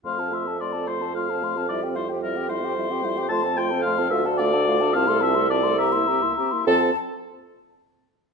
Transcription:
<<
  \new Staff \with { instrumentName = "Flute" } { \time 6/8 \key f \major \tempo 4. = 73 c'''16 a''16 c'''16 a''16 c'''16 a''16 c'''16 a''16 c'''16 a''16 c'''16 a''16 | e''16 g''16 e''16 g''16 e''16 g''16 e''16 g''16 e''16 g''16 e''16 g''16 | c'''16 a''16 c'''16 a''16 c'''16 a''16 f''16 a''16 f''16 a''16 f''16 a''16 | a''16 c'''16 a''16 c'''16 a''16 c'''16 bes''16 c'''16 bes''16 c'''16 bes''16 c'''16 |
a''8 r2 r8 | }
  \new Staff \with { instrumentName = "Oboe" } { \time 6/8 \key f \major f''8 e''8 d''8 c''8 f''4 | d''8 c''8 bes'8 c''4. | a''8 g''8 f''8 e''8 d''4 | f''8 e''8 d''8 e''4. |
a''8 r2 r8 | }
  \new Staff \with { instrumentName = "Clarinet" } { \time 6/8 \key f \major f'16 a'16 f'16 a'16 f'16 a'16 f'16 a'16 f'16 a'16 f'16 a'16 | e'16 g'16 e'16 g'16 e'16 g'16 e'16 g'16 e'16 g'16 e'16 g'16 | f'16 a'16 f'16 a'16 f'16 a'16 f'16 a'16 f'16 a'16 f'16 a'16 | f'16 a'16 f'16 a'16 f'16 a'16 g'16 e'16 g'16 e'16 g'16 e'16 |
a'8 r2 r8 | }
  \new Staff \with { instrumentName = "French horn" } { \time 6/8 \key f \major a16 c'16 a16 c'16 a16 c'16 a16 c'16 a16 c'16 a16 c'16 | g16 c'16 g16 c'16 g16 c'16 g16 c'16 g16 c'16 g16 c'16 | a16 c'16 a16 c'16 a16 c'16 a16 d'16 a16 d'16 a16 d'16 | c'16 a16 c'16 a16 c'16 a16 c'16 bes16 c'16 bes16 c'16 bes16 |
c'8 r2 r8 | }
  \new Staff \with { instrumentName = "Bassoon" } { \clef bass \time 6/8 \key f \major f,2.~ | f,2. | f,4. d,4. | c,2~ c,8 r8 |
f,8 r2 r8 | }
>>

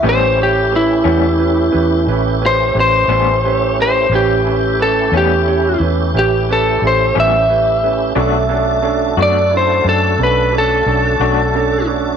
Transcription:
<<
  \new Staff \with { instrumentName = "Lead electric guitar" } { \time 12/8 \key a \mixolydian \tempo 4. = 59 c''8 g'8 e'2 r8 c''8 c''4. c''8 | g'4 a'8 g'4 r8 g'8 a'8 c''8 e''4.~ | e''4. d''8 c''8 a'8 b'8 a'2 r8 | }
  \new Staff \with { instrumentName = "Upright piano" } { \time 12/8 \key a \mixolydian <cis' g' b'>8 <cis' g' cis''>8 <cis' g' b'>8 <cis' g' b'>8 <cis' g' b'>8 <cis' g' b'>8 <cis' g' b'>8 <cis' g' b'>8 <cis' g' b'>8 <cis' g' b'>8 <cis' g' b'>8 <cis' g' b'>8 | <cis' g' b'>8 <cis' g' b'>8 <cis' g' b'>8 <cis' g' b'>8 <cis' g' cis''>8 <cis' g' b'>8 <cis' g' b'>8 <cis' g' b'>8 <cis' g' a'>8 <cis' g' b'>8 <cis' g' b'>8 <cis' g' b'>8 | <cis' d' a'>8 <cis' d' a'>8 <cis' d' a'>8 <cis' d' a'>8 <cis' d' e'>8 <cis' d' a'>8 <cis' d' a'>8 <cis' d' a'>8 <cis' d' a'>8 <cis' d' a'>8 <cis' d' a'>8 <cis' d' a'>8 | }
  \new Staff \with { instrumentName = "Tonewheel organ" } { \time 12/8 \key a \mixolydian <a cis' e' g'>1. | <a cis' e' g'>1. | <a d' fis' a'>1. | }
  \new Staff \with { instrumentName = "Clean electric guitar" } { \time 12/8 \key a \mixolydian <a, g b cis'>8 r4 <a, g b cis'>8 r2 r8 <a, g b cis'>8 r4 | r4. <a, g b cis'>8 r2 r8 <a, g b cis'>8 r4 | <b, a d' fis'>8 r4 <b, a d' fis'>8 r2 r8 <b, a d' fis'>8 r4 | }
  \new Staff \with { instrumentName = "Fingered electric bass" } { \clef bass \time 12/8 \key a \mixolydian a,,4. e,4 e,8 a,,4 a,,8 a,,4. | a,,4. e,4 e,8 a,,4 a,,8 a,,4. | b,,4. fis,4 fis,8 b,,4 b,,8 b,,4. | }
>>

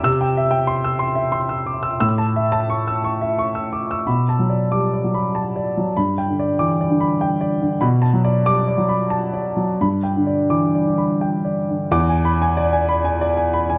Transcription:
<<
  \new Staff \with { instrumentName = "Grand piano" } { \time 3/4 \key b \minor \tempo 4 = 92 << { e'''8 r2 r8 | e'''8 r2 r8 | r4 d'''8 r4. | r4 d'''8 r4. |
r4 d'''8 r4. | r4 d'''8 r4. | d'''8 r2 r8 | } \\ { r16 g''16 e''16 g''16 c'''16 e'''16 c'''16 e''16 c'''16 e'''16 d'''16 e'''16 | r16 a''16 e''16 a''16 cis'''16 e'''16 cis'''16 e''16 cis'''16 e'''16 d'''16 e'''16 | \tuplet 3/2 { b''8 a''8 d''8~ d''8 d''8 b''8 a''8 d''8 fis8 } | \tuplet 3/2 { b''8 g''8 d''8~ d''8 d''8 b''8 g''8 d''8 d8 } |
\tuplet 3/2 { b''8 a''8 d''8~ d''8 d''8 b''8 a''8 d''8 fis8 } | \tuplet 3/2 { b''8 g''8 d''8~ d''8 d''8 b''8 g''8 d''8 d8 } | r16 gis''16 b''16 gis''16 d''16 gis''16 b''16 gis''16 d''16 gis''16 b''16 gis''16 | } >> }
  \new Staff \with { instrumentName = "Grand piano" } { \clef bass \time 3/4 \key b \minor c2. | a,2. | b,8 fis8 g8 fis4 r8 | g,8 d8 e8 d4 r8 |
b,8 fis8 g8 fis4 r8 | g,8 d8 e8 d4 r8 | e,2. | }
>>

